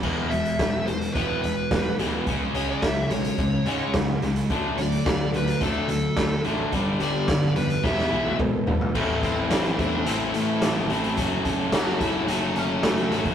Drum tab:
CC |x---------------|----------------|----------------|----------------|
HH |--xxx-xxx-x-x-x-|x-x-x-xxx-x-x-xx|x-xxx-xxx-x-x-x-|x-x-x-xx--------|
SD |----o-------o-o-|----o-------o-o-|----o-------o---|----o---oo------|
T1 |----------------|----------------|----------------|-----------o----|
T2 |----------------|----------------|----------------|------------o---|
FT |----------------|----------------|----------------|--------------oo|
BD |o---o---o---o---|o---o---o---o---|o---o---o---o---|o---o---o---o---|

CC |x---------------|----------------|
HH |--x-xxx-x-x-x-xx|x-x-x-x-x-x-xxxx|
SD |----o-------o---|----o-------o-o-|
T1 |----------------|----------------|
T2 |----------------|----------------|
FT |----------------|----------------|
BD |o-o---o---------|o-o---o--------o|